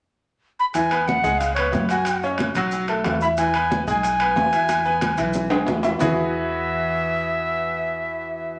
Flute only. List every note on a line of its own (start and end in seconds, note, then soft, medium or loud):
0.60 0.66 B5 medium
0.74 1.09 G#5 loud
1.07 1.40 F#5 medium
1.38 1.54 F5 medium
1.54 1.86 C#5 medium
1.90 2.36 G#5 medium
3.22 3.28 B5 medium
3.38 3.84 G#5 loud
3.89 5.65 G#5 loud
6.01 8.59 E5 loud